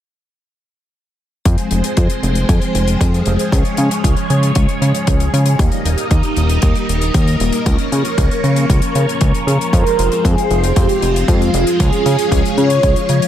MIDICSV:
0, 0, Header, 1, 5, 480
1, 0, Start_track
1, 0, Key_signature, -4, "minor"
1, 0, Tempo, 517241
1, 1349, Time_signature, 4, 2, 24, 8
1, 12321, End_track
2, 0, Start_track
2, 0, Title_t, "Analog polysynth"
2, 0, Program_c, 0, 90
2, 9031, Note_on_c, 0, 70, 99
2, 9509, Note_on_c, 0, 68, 94
2, 9525, Note_off_c, 0, 70, 0
2, 9987, Note_on_c, 0, 67, 96
2, 10004, Note_off_c, 0, 68, 0
2, 10435, Note_off_c, 0, 67, 0
2, 10465, Note_on_c, 0, 65, 95
2, 10946, Note_on_c, 0, 68, 109
2, 10962, Note_off_c, 0, 65, 0
2, 11670, Note_on_c, 0, 73, 110
2, 11690, Note_off_c, 0, 68, 0
2, 12321, Note_off_c, 0, 73, 0
2, 12321, End_track
3, 0, Start_track
3, 0, Title_t, "String machine"
3, 0, Program_c, 1, 50
3, 1348, Note_on_c, 1, 53, 73
3, 1348, Note_on_c, 1, 68, 67
3, 1349, Note_on_c, 1, 56, 69
3, 1349, Note_on_c, 1, 60, 67
3, 1349, Note_on_c, 1, 72, 80
3, 3250, Note_off_c, 1, 60, 0
3, 3250, Note_off_c, 1, 72, 0
3, 3270, Note_on_c, 1, 61, 69
3, 3270, Note_on_c, 1, 73, 83
3, 5152, Note_off_c, 1, 53, 0
3, 5152, Note_off_c, 1, 56, 0
3, 5152, Note_off_c, 1, 68, 0
3, 5170, Note_off_c, 1, 61, 0
3, 5171, Note_off_c, 1, 73, 0
3, 5188, Note_on_c, 1, 63, 71
3, 5188, Note_on_c, 1, 75, 83
3, 5189, Note_on_c, 1, 55, 73
3, 5189, Note_on_c, 1, 58, 66
3, 5190, Note_on_c, 1, 70, 67
3, 7090, Note_off_c, 1, 55, 0
3, 7090, Note_off_c, 1, 63, 0
3, 7090, Note_off_c, 1, 75, 0
3, 7110, Note_on_c, 1, 61, 67
3, 7111, Note_on_c, 1, 53, 76
3, 7111, Note_on_c, 1, 73, 79
3, 8992, Note_off_c, 1, 58, 0
3, 8993, Note_off_c, 1, 70, 0
3, 9010, Note_off_c, 1, 61, 0
3, 9011, Note_off_c, 1, 73, 0
3, 9030, Note_on_c, 1, 60, 71
3, 9030, Note_on_c, 1, 65, 66
3, 9030, Note_on_c, 1, 72, 83
3, 9031, Note_on_c, 1, 56, 69
3, 10931, Note_off_c, 1, 60, 0
3, 10931, Note_off_c, 1, 72, 0
3, 10949, Note_on_c, 1, 61, 70
3, 10950, Note_on_c, 1, 73, 86
3, 12321, Note_off_c, 1, 53, 0
3, 12321, Note_off_c, 1, 56, 0
3, 12321, Note_off_c, 1, 61, 0
3, 12321, Note_off_c, 1, 65, 0
3, 12321, Note_off_c, 1, 73, 0
3, 12321, End_track
4, 0, Start_track
4, 0, Title_t, "Analog synth bass"
4, 0, Program_c, 2, 38
4, 1349, Note_on_c, 2, 41, 102
4, 1451, Note_off_c, 2, 41, 0
4, 1589, Note_on_c, 2, 29, 87
4, 1691, Note_off_c, 2, 29, 0
4, 1830, Note_on_c, 2, 41, 96
4, 1931, Note_off_c, 2, 41, 0
4, 2068, Note_on_c, 2, 29, 94
4, 2272, Note_off_c, 2, 29, 0
4, 2310, Note_on_c, 2, 41, 97
4, 2411, Note_off_c, 2, 41, 0
4, 2549, Note_on_c, 2, 29, 79
4, 2753, Note_off_c, 2, 29, 0
4, 2790, Note_on_c, 2, 41, 88
4, 2994, Note_off_c, 2, 41, 0
4, 3030, Note_on_c, 2, 29, 99
4, 3131, Note_off_c, 2, 29, 0
4, 3270, Note_on_c, 2, 37, 100
4, 3372, Note_off_c, 2, 37, 0
4, 3508, Note_on_c, 2, 49, 91
4, 3611, Note_off_c, 2, 49, 0
4, 3750, Note_on_c, 2, 37, 99
4, 3851, Note_off_c, 2, 37, 0
4, 3989, Note_on_c, 2, 49, 92
4, 4193, Note_off_c, 2, 49, 0
4, 4230, Note_on_c, 2, 37, 94
4, 4332, Note_off_c, 2, 37, 0
4, 4468, Note_on_c, 2, 49, 78
4, 4570, Note_off_c, 2, 49, 0
4, 4709, Note_on_c, 2, 37, 81
4, 4913, Note_off_c, 2, 37, 0
4, 4948, Note_on_c, 2, 49, 86
4, 5153, Note_off_c, 2, 49, 0
4, 5190, Note_on_c, 2, 39, 97
4, 5291, Note_off_c, 2, 39, 0
4, 5429, Note_on_c, 2, 27, 87
4, 5531, Note_off_c, 2, 27, 0
4, 5669, Note_on_c, 2, 39, 94
4, 5771, Note_off_c, 2, 39, 0
4, 5910, Note_on_c, 2, 27, 94
4, 6113, Note_off_c, 2, 27, 0
4, 6150, Note_on_c, 2, 39, 95
4, 6251, Note_off_c, 2, 39, 0
4, 6389, Note_on_c, 2, 27, 79
4, 6593, Note_off_c, 2, 27, 0
4, 6630, Note_on_c, 2, 39, 87
4, 6833, Note_off_c, 2, 39, 0
4, 6869, Note_on_c, 2, 27, 95
4, 6971, Note_off_c, 2, 27, 0
4, 7110, Note_on_c, 2, 37, 99
4, 7211, Note_off_c, 2, 37, 0
4, 7350, Note_on_c, 2, 49, 88
4, 7452, Note_off_c, 2, 49, 0
4, 7590, Note_on_c, 2, 37, 97
4, 7691, Note_off_c, 2, 37, 0
4, 7828, Note_on_c, 2, 49, 94
4, 8032, Note_off_c, 2, 49, 0
4, 8070, Note_on_c, 2, 37, 90
4, 8171, Note_off_c, 2, 37, 0
4, 8308, Note_on_c, 2, 49, 77
4, 8410, Note_off_c, 2, 49, 0
4, 8550, Note_on_c, 2, 37, 96
4, 8651, Note_off_c, 2, 37, 0
4, 8788, Note_on_c, 2, 49, 86
4, 8890, Note_off_c, 2, 49, 0
4, 9030, Note_on_c, 2, 41, 101
4, 9131, Note_off_c, 2, 41, 0
4, 9269, Note_on_c, 2, 29, 90
4, 9371, Note_off_c, 2, 29, 0
4, 9510, Note_on_c, 2, 41, 97
4, 9611, Note_off_c, 2, 41, 0
4, 9748, Note_on_c, 2, 29, 95
4, 9953, Note_off_c, 2, 29, 0
4, 9989, Note_on_c, 2, 41, 97
4, 10091, Note_off_c, 2, 41, 0
4, 10228, Note_on_c, 2, 29, 83
4, 10432, Note_off_c, 2, 29, 0
4, 10470, Note_on_c, 2, 41, 85
4, 10673, Note_off_c, 2, 41, 0
4, 10709, Note_on_c, 2, 29, 96
4, 10811, Note_off_c, 2, 29, 0
4, 10949, Note_on_c, 2, 37, 103
4, 11051, Note_off_c, 2, 37, 0
4, 11188, Note_on_c, 2, 49, 90
4, 11291, Note_off_c, 2, 49, 0
4, 11429, Note_on_c, 2, 37, 100
4, 11531, Note_off_c, 2, 37, 0
4, 11669, Note_on_c, 2, 49, 94
4, 11873, Note_off_c, 2, 49, 0
4, 11910, Note_on_c, 2, 37, 93
4, 12011, Note_off_c, 2, 37, 0
4, 12150, Note_on_c, 2, 49, 80
4, 12251, Note_off_c, 2, 49, 0
4, 12321, End_track
5, 0, Start_track
5, 0, Title_t, "Drums"
5, 1350, Note_on_c, 9, 36, 104
5, 1350, Note_on_c, 9, 42, 89
5, 1442, Note_off_c, 9, 42, 0
5, 1443, Note_off_c, 9, 36, 0
5, 1464, Note_on_c, 9, 42, 53
5, 1557, Note_off_c, 9, 42, 0
5, 1585, Note_on_c, 9, 42, 72
5, 1677, Note_off_c, 9, 42, 0
5, 1707, Note_on_c, 9, 42, 58
5, 1799, Note_off_c, 9, 42, 0
5, 1826, Note_on_c, 9, 42, 84
5, 1830, Note_on_c, 9, 36, 93
5, 1919, Note_off_c, 9, 42, 0
5, 1923, Note_off_c, 9, 36, 0
5, 1946, Note_on_c, 9, 42, 55
5, 2039, Note_off_c, 9, 42, 0
5, 2072, Note_on_c, 9, 42, 48
5, 2165, Note_off_c, 9, 42, 0
5, 2184, Note_on_c, 9, 42, 54
5, 2277, Note_off_c, 9, 42, 0
5, 2310, Note_on_c, 9, 36, 113
5, 2311, Note_on_c, 9, 42, 88
5, 2403, Note_off_c, 9, 36, 0
5, 2404, Note_off_c, 9, 42, 0
5, 2427, Note_on_c, 9, 42, 49
5, 2520, Note_off_c, 9, 42, 0
5, 2551, Note_on_c, 9, 42, 74
5, 2644, Note_off_c, 9, 42, 0
5, 2667, Note_on_c, 9, 42, 50
5, 2760, Note_off_c, 9, 42, 0
5, 2790, Note_on_c, 9, 36, 98
5, 2794, Note_on_c, 9, 42, 100
5, 2883, Note_off_c, 9, 36, 0
5, 2887, Note_off_c, 9, 42, 0
5, 2916, Note_on_c, 9, 42, 49
5, 3009, Note_off_c, 9, 42, 0
5, 3021, Note_on_c, 9, 42, 72
5, 3114, Note_off_c, 9, 42, 0
5, 3149, Note_on_c, 9, 42, 49
5, 3242, Note_off_c, 9, 42, 0
5, 3270, Note_on_c, 9, 36, 111
5, 3277, Note_on_c, 9, 42, 95
5, 3363, Note_off_c, 9, 36, 0
5, 3370, Note_off_c, 9, 42, 0
5, 3386, Note_on_c, 9, 42, 48
5, 3479, Note_off_c, 9, 42, 0
5, 3501, Note_on_c, 9, 42, 67
5, 3594, Note_off_c, 9, 42, 0
5, 3630, Note_on_c, 9, 42, 57
5, 3723, Note_off_c, 9, 42, 0
5, 3750, Note_on_c, 9, 36, 99
5, 3753, Note_on_c, 9, 42, 96
5, 3843, Note_off_c, 9, 36, 0
5, 3846, Note_off_c, 9, 42, 0
5, 3865, Note_on_c, 9, 42, 47
5, 3958, Note_off_c, 9, 42, 0
5, 3991, Note_on_c, 9, 42, 51
5, 4084, Note_off_c, 9, 42, 0
5, 4110, Note_on_c, 9, 42, 45
5, 4203, Note_off_c, 9, 42, 0
5, 4225, Note_on_c, 9, 42, 88
5, 4230, Note_on_c, 9, 36, 119
5, 4318, Note_off_c, 9, 42, 0
5, 4322, Note_off_c, 9, 36, 0
5, 4349, Note_on_c, 9, 42, 47
5, 4441, Note_off_c, 9, 42, 0
5, 4473, Note_on_c, 9, 42, 71
5, 4566, Note_off_c, 9, 42, 0
5, 4590, Note_on_c, 9, 42, 51
5, 4682, Note_off_c, 9, 42, 0
5, 4706, Note_on_c, 9, 42, 89
5, 4710, Note_on_c, 9, 36, 100
5, 4799, Note_off_c, 9, 42, 0
5, 4802, Note_off_c, 9, 36, 0
5, 4827, Note_on_c, 9, 42, 58
5, 4920, Note_off_c, 9, 42, 0
5, 4953, Note_on_c, 9, 42, 76
5, 5046, Note_off_c, 9, 42, 0
5, 5063, Note_on_c, 9, 42, 56
5, 5156, Note_off_c, 9, 42, 0
5, 5189, Note_on_c, 9, 36, 118
5, 5191, Note_on_c, 9, 42, 87
5, 5282, Note_off_c, 9, 36, 0
5, 5284, Note_off_c, 9, 42, 0
5, 5305, Note_on_c, 9, 42, 45
5, 5397, Note_off_c, 9, 42, 0
5, 5433, Note_on_c, 9, 42, 76
5, 5526, Note_off_c, 9, 42, 0
5, 5546, Note_on_c, 9, 42, 47
5, 5639, Note_off_c, 9, 42, 0
5, 5667, Note_on_c, 9, 42, 86
5, 5669, Note_on_c, 9, 36, 99
5, 5760, Note_off_c, 9, 42, 0
5, 5762, Note_off_c, 9, 36, 0
5, 5783, Note_on_c, 9, 42, 49
5, 5876, Note_off_c, 9, 42, 0
5, 5907, Note_on_c, 9, 42, 46
5, 5999, Note_off_c, 9, 42, 0
5, 6027, Note_on_c, 9, 42, 50
5, 6120, Note_off_c, 9, 42, 0
5, 6142, Note_on_c, 9, 42, 88
5, 6150, Note_on_c, 9, 36, 115
5, 6235, Note_off_c, 9, 42, 0
5, 6242, Note_off_c, 9, 36, 0
5, 6268, Note_on_c, 9, 42, 46
5, 6360, Note_off_c, 9, 42, 0
5, 6396, Note_on_c, 9, 42, 67
5, 6489, Note_off_c, 9, 42, 0
5, 6510, Note_on_c, 9, 42, 51
5, 6602, Note_off_c, 9, 42, 0
5, 6629, Note_on_c, 9, 42, 92
5, 6630, Note_on_c, 9, 36, 101
5, 6722, Note_off_c, 9, 42, 0
5, 6723, Note_off_c, 9, 36, 0
5, 6751, Note_on_c, 9, 42, 51
5, 6844, Note_off_c, 9, 42, 0
5, 6869, Note_on_c, 9, 42, 66
5, 6961, Note_off_c, 9, 42, 0
5, 6984, Note_on_c, 9, 42, 51
5, 7076, Note_off_c, 9, 42, 0
5, 7109, Note_on_c, 9, 42, 79
5, 7110, Note_on_c, 9, 36, 114
5, 7202, Note_off_c, 9, 42, 0
5, 7203, Note_off_c, 9, 36, 0
5, 7224, Note_on_c, 9, 42, 52
5, 7317, Note_off_c, 9, 42, 0
5, 7353, Note_on_c, 9, 42, 66
5, 7446, Note_off_c, 9, 42, 0
5, 7468, Note_on_c, 9, 42, 52
5, 7561, Note_off_c, 9, 42, 0
5, 7590, Note_on_c, 9, 36, 98
5, 7590, Note_on_c, 9, 42, 89
5, 7683, Note_off_c, 9, 36, 0
5, 7683, Note_off_c, 9, 42, 0
5, 7715, Note_on_c, 9, 42, 47
5, 7808, Note_off_c, 9, 42, 0
5, 7831, Note_on_c, 9, 42, 49
5, 7924, Note_off_c, 9, 42, 0
5, 7947, Note_on_c, 9, 42, 52
5, 8040, Note_off_c, 9, 42, 0
5, 8070, Note_on_c, 9, 36, 112
5, 8072, Note_on_c, 9, 42, 90
5, 8163, Note_off_c, 9, 36, 0
5, 8165, Note_off_c, 9, 42, 0
5, 8183, Note_on_c, 9, 42, 56
5, 8276, Note_off_c, 9, 42, 0
5, 8308, Note_on_c, 9, 42, 65
5, 8401, Note_off_c, 9, 42, 0
5, 8436, Note_on_c, 9, 42, 46
5, 8529, Note_off_c, 9, 42, 0
5, 8545, Note_on_c, 9, 42, 94
5, 8550, Note_on_c, 9, 36, 105
5, 8637, Note_off_c, 9, 42, 0
5, 8642, Note_off_c, 9, 36, 0
5, 8672, Note_on_c, 9, 42, 52
5, 8765, Note_off_c, 9, 42, 0
5, 8797, Note_on_c, 9, 42, 63
5, 8890, Note_off_c, 9, 42, 0
5, 8919, Note_on_c, 9, 42, 47
5, 9012, Note_off_c, 9, 42, 0
5, 9030, Note_on_c, 9, 36, 105
5, 9035, Note_on_c, 9, 42, 82
5, 9123, Note_off_c, 9, 36, 0
5, 9128, Note_off_c, 9, 42, 0
5, 9156, Note_on_c, 9, 42, 52
5, 9248, Note_off_c, 9, 42, 0
5, 9270, Note_on_c, 9, 42, 65
5, 9363, Note_off_c, 9, 42, 0
5, 9389, Note_on_c, 9, 42, 47
5, 9482, Note_off_c, 9, 42, 0
5, 9510, Note_on_c, 9, 36, 95
5, 9512, Note_on_c, 9, 42, 79
5, 9602, Note_off_c, 9, 36, 0
5, 9605, Note_off_c, 9, 42, 0
5, 9633, Note_on_c, 9, 42, 48
5, 9726, Note_off_c, 9, 42, 0
5, 9749, Note_on_c, 9, 42, 43
5, 9842, Note_off_c, 9, 42, 0
5, 9870, Note_on_c, 9, 42, 51
5, 9963, Note_off_c, 9, 42, 0
5, 9988, Note_on_c, 9, 42, 88
5, 9989, Note_on_c, 9, 36, 111
5, 10081, Note_off_c, 9, 42, 0
5, 10082, Note_off_c, 9, 36, 0
5, 10106, Note_on_c, 9, 42, 52
5, 10199, Note_off_c, 9, 42, 0
5, 10230, Note_on_c, 9, 42, 74
5, 10322, Note_off_c, 9, 42, 0
5, 10358, Note_on_c, 9, 42, 54
5, 10450, Note_off_c, 9, 42, 0
5, 10469, Note_on_c, 9, 36, 101
5, 10470, Note_on_c, 9, 42, 91
5, 10562, Note_off_c, 9, 36, 0
5, 10563, Note_off_c, 9, 42, 0
5, 10595, Note_on_c, 9, 42, 48
5, 10688, Note_off_c, 9, 42, 0
5, 10708, Note_on_c, 9, 42, 68
5, 10800, Note_off_c, 9, 42, 0
5, 10829, Note_on_c, 9, 42, 54
5, 10922, Note_off_c, 9, 42, 0
5, 10949, Note_on_c, 9, 36, 102
5, 10949, Note_on_c, 9, 42, 95
5, 11042, Note_off_c, 9, 36, 0
5, 11042, Note_off_c, 9, 42, 0
5, 11067, Note_on_c, 9, 42, 50
5, 11160, Note_off_c, 9, 42, 0
5, 11191, Note_on_c, 9, 42, 80
5, 11283, Note_off_c, 9, 42, 0
5, 11308, Note_on_c, 9, 42, 47
5, 11401, Note_off_c, 9, 42, 0
5, 11429, Note_on_c, 9, 36, 90
5, 11433, Note_on_c, 9, 42, 94
5, 11522, Note_off_c, 9, 36, 0
5, 11526, Note_off_c, 9, 42, 0
5, 11557, Note_on_c, 9, 42, 50
5, 11650, Note_off_c, 9, 42, 0
5, 11671, Note_on_c, 9, 42, 44
5, 11764, Note_off_c, 9, 42, 0
5, 11786, Note_on_c, 9, 42, 57
5, 11879, Note_off_c, 9, 42, 0
5, 11908, Note_on_c, 9, 42, 78
5, 11910, Note_on_c, 9, 36, 110
5, 12001, Note_off_c, 9, 42, 0
5, 12002, Note_off_c, 9, 36, 0
5, 12028, Note_on_c, 9, 42, 53
5, 12121, Note_off_c, 9, 42, 0
5, 12146, Note_on_c, 9, 42, 74
5, 12239, Note_off_c, 9, 42, 0
5, 12270, Note_on_c, 9, 42, 49
5, 12321, Note_off_c, 9, 42, 0
5, 12321, End_track
0, 0, End_of_file